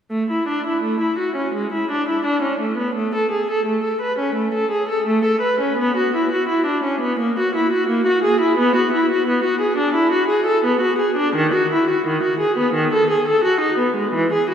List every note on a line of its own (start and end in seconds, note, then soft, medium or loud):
0.10 0.29 A3 medium
0.30 0.48 E4 medium
0.48 0.65 D4 medium
0.67 0.84 E4 medium
0.83 1.00 A3 medium
1.01 1.18 E4 medium
1.19 1.36 F#4 medium
1.36 1.53 C#4 medium
1.54 1.71 G#3 medium
1.73 1.89 E4 medium
1.91 2.08 D4 medium
2.09 2.25 E4 medium
2.25 2.42 D4 medium
2.42 2.60 C#4 medium
2.61 2.78 A3 medium
2.78 2.95 B3 medium
2.95 3.12 A3 medium
3.15 3.31 A4 medium
3.32 3.48 G#4 medium
3.51 3.66 A4 medium
3.66 3.83 A3 medium
3.84 4.00 A4 medium
4.01 4.18 B4 medium
4.19 4.35 C#4 medium
4.36 4.53 A3 medium
4.54 4.71 A4 medium
4.71 4.88 G#4 medium
4.89 5.06 A4 medium
5.07 5.24 A3 medium
5.25 5.42 A4 medium
5.41 5.59 B4 medium
5.60 5.78 C#4 medium
5.78 5.96 B3 medium
5.97 6.14 F#4 medium
6.15 6.32 E4 medium
6.32 6.49 F#4 medium
6.49 6.66 E4 medium
6.66 6.83 D4 medium
6.84 7.01 C#4 medium
7.01 7.18 B3 medium
7.19 7.36 A#3 medium
7.39 7.55 F#4 medium
7.55 7.72 E4 medium
7.73 7.89 F#4 medium
7.89 8.06 A#3 medium
8.07 8.24 F#4 medium
8.24 8.41 G#4 medium
8.41 8.58 E4 medium
8.58 8.75 B3 medium
8.76 8.93 F#4 medium
8.93 9.10 E4 medium
9.12 9.28 F#4 medium
9.28 9.44 B3 medium
9.44 9.61 F#4 medium
9.61 9.78 G#4 medium
9.77 9.95 D4 medium
9.94 10.12 E4 medium
10.12 10.29 F#4 medium
10.28 10.46 G#4 medium
10.46 10.63 A4 medium
10.65 10.81 B3 medium
10.81 10.98 F#4 medium
10.99 11.16 G#4 medium
11.17 11.34 D4 medium
11.35 11.52 D#3 medium
11.54 11.70 F#4 medium
11.73 11.88 E4 medium
11.90 12.05 F#4 medium
12.07 12.23 D#3 medium
12.23 12.39 F#4 medium
12.40 12.56 G#4 medium
12.58 12.74 B3 medium
12.74 12.91 D#3 medium
12.93 13.09 A4 medium
13.10 13.26 G#4 medium
13.28 13.44 A4 medium
13.44 13.61 F#4 medium
13.61 13.77 D#4 medium
13.78 13.95 B3 medium
13.96 14.12 G#3 medium
14.14 14.29 E3 medium
14.33 14.48 G#4 medium
14.50 14.54 F#4 medium